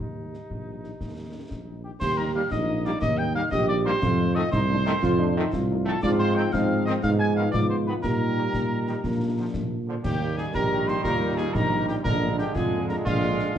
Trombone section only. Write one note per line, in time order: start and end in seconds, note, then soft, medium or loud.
2.34 2.41 G3 medium
2.34 2.40 A#3 medium
2.84 2.90 G3 loud
2.84 2.91 A#3 medium
3.34 3.40 G3 medium
3.34 3.40 A#3 medium
3.85 3.91 G3 loud
3.85 3.91 A#3 loud
4.35 4.42 D#3 loud
4.35 4.41 A3 medium
4.86 4.92 D#3 loud
4.86 4.92 A3 loud
5.36 5.42 D#3 loud
5.36 5.43 A3 medium
5.86 5.92 D#3 loud
5.86 5.92 A3 loud
6.36 6.42 D#3 loud
6.36 6.42 C4 medium
6.87 6.93 D#3 loud
6.87 6.93 C4 loud
7.36 7.43 D#3 medium
7.36 7.42 B3 medium
7.87 7.93 D#3 medium
7.87 7.93 B3 medium
8.36 8.42 D#3 medium
8.36 8.42 G3 medium
8.87 8.93 D#3 medium
8.87 8.93 G3 medium
9.38 9.44 D3 medium
9.38 9.44 F3 medium
9.87 9.94 D3 medium
9.87 9.93 F3 medium
10.05 12.01 D#3 loud
10.05 12.01 G3 loud
12.05 13.58 D3 loud
12.05 13.58 G#3 loud